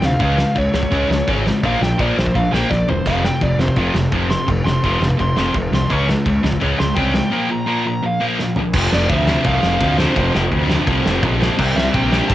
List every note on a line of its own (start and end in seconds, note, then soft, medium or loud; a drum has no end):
0.02 0.14 D2 medium
0.02 0.19 F2 medium
0.02 0.19 C3 medium
0.02 0.21 F5 medium
0.02 snare loud
0.19 0.43 C#2 medium
0.19 0.35 C#3 medium
0.19 0.36 G#3 medium
0.19 0.38 C#4 medium
0.19 0.57 F5 medium
0.19 kick loud
0.19 crash medium
0.36 0.54 C#3 medium
0.36 0.54 G#3 medium
0.36 snare loud
0.55 0.67 C#2 medium
0.55 0.72 C#3 medium
0.55 0.72 G#3 medium
0.55 1.27 C#5 loud
0.55 kick loud
0.55 crash medium
0.74 0.85 C#2 medium
0.74 0.91 C#3 medium
0.74 0.91 G#3 medium
0.74 snare loud
0.83 kick medium
0.92 1.04 C#2 medium
0.92 1.07 C#3 loud
0.92 1.08 G#3 loud
0.92 1.10 C#4 loud
0.92 kick medium
0.92 crash medium
1.09 1.21 C#2 medium
1.09 1.26 C#3 medium
1.09 1.26 G#3 medium
1.09 snare loud
1.28 1.51 G#1 medium
1.28 1.45 C#3 loud
1.28 1.45 G#3 loud
1.28 1.46 C#4 medium
1.28 kick loud
1.28 crash medium
1.47 1.63 C#3 medium
1.47 1.63 G#3 medium
1.47 snare loud
1.63 1.75 A#1 loud
1.63 1.81 A#2 loud
1.63 1.81 F3 medium
1.63 1.81 A#3 medium
1.63 1.82 F5 medium
1.63 kick loud
1.63 crash medium
1.81 1.92 A#1 medium
1.81 1.98 A#2 medium
1.81 1.98 F3 medium
1.81 1.99 G5 medium
1.81 snare loud
1.99 2.11 A#1 loud
1.99 2.16 A#2 medium
1.99 2.16 F3 medium
1.99 2.17 A#3 medium
1.99 2.17 D5 medium
1.99 kick loud
1.99 crash medium
2.18 2.29 A#1 medium
2.18 2.34 A#2 medium
2.18 2.34 F3 medium
2.18 2.35 C5 medium
2.18 snare loud
2.26 kick medium
2.35 2.47 A#1 medium
2.35 2.52 A#2 medium
2.35 2.52 F3 medium
2.35 2.52 F5 loud
2.35 kick medium
2.35 crash medium
2.52 2.64 A#1 medium
2.52 2.70 A#2 medium
2.52 2.71 F3 medium
2.52 2.71 A#3 loud
2.52 2.70 G5 loud
2.52 snare loud
2.70 2.82 A#1 medium
2.70 2.87 A#2 medium
2.70 2.87 F3 medium
2.70 2.89 D5 medium
2.70 kick loud
2.70 snare medium
2.87 2.99 E1 medium
2.87 3.05 A#2 medium
2.87 3.05 F3 medium
2.87 3.06 C5 medium
2.87 floor tom medium
3.06 3.29 F1 loud
3.06 3.23 F2 medium
3.06 3.24 C3 medium
3.06 3.24 F3 medium
3.06 3.24 F5 loud
3.06 kick loud
3.06 splash medium
3.06 crash medium
3.25 3.41 F2 medium
3.25 3.41 C3 medium
3.25 3.42 G5 medium
3.25 snare loud
3.41 3.53 F1 medium
3.41 3.58 F2 medium
3.41 3.59 C3 medium
3.41 3.60 D5 medium
3.41 kick loud
3.41 crash medium
3.58 3.70 F1 medium
3.58 3.76 F2 medium
3.58 3.77 C3 medium
3.58 3.77 C5 medium
3.58 snare loud
3.68 kick medium
3.76 3.88 F1 medium
3.76 3.94 F2 medium
3.76 3.94 C3 loud
3.76 3.95 F3 medium
3.76 3.94 F4 medium
3.76 kick medium
3.76 crash medium
3.94 4.06 F1 medium
3.94 4.11 F2 medium
3.94 4.11 C3 medium
3.94 snare loud
4.12 4.35 F1 medium
4.12 4.30 F2 medium
4.12 4.30 C3 medium
4.12 4.30 F3 loud
4.12 kick loud
4.12 crash medium
4.30 4.47 F2 medium
4.30 4.47 C3 medium
4.30 4.48 C6 loud
4.30 snare loud
4.48 4.60 F1 medium
4.48 4.64 F2 medium
4.48 4.64 C3 medium
4.48 kick loud
4.48 crash medium
4.65 4.77 F1 medium
4.65 4.83 F2 medium
4.65 4.83 C3 medium
4.65 4.83 C6 medium
4.65 snare loud
4.84 4.95 F1 medium
4.84 5.01 F2 medium
4.84 5.01 C3 medium
4.84 5.01 F3 medium
4.84 5.03 C6 medium
4.84 kick loud
4.84 crash medium
5.00 5.12 F1 medium
5.00 5.19 F2 medium
5.00 5.19 C3 medium
5.00 snare loud
5.10 kick medium
5.19 5.31 F1 loud
5.19 5.35 F2 medium
5.19 5.36 C3 medium
5.19 5.37 C6 medium
5.19 kick medium
5.19 crash medium
5.37 5.49 F1 medium
5.37 5.54 F2 loud
5.37 5.54 C3 loud
5.37 5.54 F3 loud
5.37 5.55 C6 loud
5.37 snare loud
5.54 5.66 F1 loud
5.54 5.72 F2 medium
5.54 5.72 C3 medium
5.54 kick loud
5.54 crash medium
5.72 5.84 C2 medium
5.72 5.89 F2 medium
5.72 5.89 C3 medium
5.72 5.92 C6 medium
5.72 snare loud
5.90 6.13 C#2 loud
5.90 6.07 C#3 medium
5.90 6.07 G#3 medium
5.90 6.08 C#4 loud
5.90 6.09 C#6 loud
5.90 kick loud
5.90 crash medium
6.08 6.24 C#3 medium
6.08 6.25 G#3 medium
6.08 snare loud
6.25 6.38 C#2 medium
6.25 6.42 C#3 medium
6.25 6.42 G#3 medium
6.25 kick loud
6.25 crash medium
6.43 6.55 C#2 medium
6.43 6.59 C#3 medium
6.43 6.60 G#3 medium
6.43 snare loud
6.52 kick medium
6.60 6.73 C#2 medium
6.60 6.77 C#3 medium
6.60 6.78 G#3 medium
6.60 6.79 C#4 loud
6.60 kick medium
6.60 crash medium
6.79 6.91 C#2 medium
6.79 6.94 C#3 medium
6.79 6.95 G#3 medium
6.79 6.97 C6 loud
6.79 snare loud
6.95 7.19 C2 medium
6.95 7.12 C#3 loud
6.95 7.12 G#3 medium
6.95 7.14 C#4 loud
6.95 7.48 G5 loud
6.95 kick loud
6.95 crash medium
7.13 7.30 C#3 medium
7.13 7.30 G#3 medium
7.13 snare loud
7.30 7.48 A#2 loud
7.30 7.49 F3 medium
7.30 7.49 A#3 loud
7.49 7.65 A#2 medium
7.49 7.66 F3 medium
7.49 7.85 A#5 medium
7.66 7.83 A#2 medium
7.66 7.84 F3 loud
7.66 7.85 A#3 medium
7.84 8.01 A#2 medium
7.84 8.02 F3 medium
7.84 8.04 A#5 loud
8.02 8.19 A#2 medium
8.02 8.20 F3 medium
8.02 8.22 F5 loud
8.20 8.38 A#2 medium
8.20 8.38 F3 medium
8.20 8.38 A#3 loud
8.39 8.55 A#2 medium
8.39 8.56 F3 medium
8.39 snare medium
8.56 8.73 A#2 medium
8.56 8.74 F3 medium
8.56 floor tom loud
8.73 8.87 F1 medium
8.73 9.10 F2 loud
8.73 9.11 C3 loud
8.73 9.12 F3 loud
8.73 kick loud
8.73 crash loud
8.93 9.06 F1 medium
8.93 9.09 D5 medium
8.93 snare loud
9.09 9.36 D2 medium
9.09 9.27 F2 medium
9.09 9.27 C3 medium
9.09 9.29 F3 medium
9.09 9.46 E5 loud
9.09 kick loud
9.09 ride medium
9.27 9.45 F2 medium
9.27 9.45 C3 loud
9.27 9.46 F3 medium
9.27 snare loud
9.44 9.58 C2 loud
9.44 9.80 F2 medium
9.44 9.81 C3 loud
9.44 9.82 F3 loud
9.44 9.96 F5 loud
9.44 kick loud
9.44 ride medium
9.63 9.76 F1 medium
9.63 snare loud
9.80 10.07 D2 loud
9.80 9.96 F2 medium
9.80 9.97 C3 medium
9.80 9.97 F3 loud
9.80 kick loud
9.80 ride medium
9.97 10.14 F2 medium
9.97 10.15 C3 loud
9.97 10.16 F3 medium
9.97 10.31 C5 medium
9.97 snare loud
10.15 10.29 F1 loud
10.15 10.49 F2 loud
10.15 10.50 C3 loud
10.15 10.51 F3 loud
10.15 kick loud
10.15 ride medium
10.35 10.47 F1 loud
10.35 snare loud
10.51 10.78 D2 medium
10.51 10.69 F2 medium
10.51 10.70 C3 medium
10.51 10.70 F3 medium
10.51 kick loud
10.51 ride medium
10.69 10.86 F2 medium
10.69 10.87 C3 medium
10.69 10.88 F3 loud
10.69 snare loud
10.87 11.00 C2 loud
10.87 11.22 F2 medium
10.87 11.22 C3 loud
10.87 11.23 F3 loud
10.87 kick loud
10.87 ride medium
11.05 11.18 F1 loud
11.05 snare loud
11.23 11.48 A#1 loud
11.23 11.39 F2 loud
11.23 11.40 C3 loud
11.23 11.41 F3 loud
11.23 kick loud
11.23 ride medium
11.41 11.57 F2 medium
11.41 11.56 C3 medium
11.41 11.58 F3 medium
11.41 snare loud
11.58 11.71 C2 loud
11.58 11.94 C3 loud
11.58 11.94 G3 loud
11.58 11.95 C4 loud
11.58 kick loud
11.58 crash loud
11.75 11.88 C2 loud
11.75 11.92 E5 medium
11.75 snare loud
11.94 12.20 A#1 loud
11.94 12.10 C3 medium
11.94 12.11 G3 loud
11.94 12.12 C4 medium
11.94 12.28 G5 loud
11.94 kick loud
11.94 ride medium
12.11 12.28 C3 medium
12.11 12.29 G3 loud
12.11 12.31 C4 loud
12.11 snare loud
12.28 12.35 G1 loud
12.28 12.35 C3 medium
12.28 12.35 G3 loud
12.28 12.35 C4 loud
12.28 12.35 A5 loud
12.28 kick loud
12.28 ride medium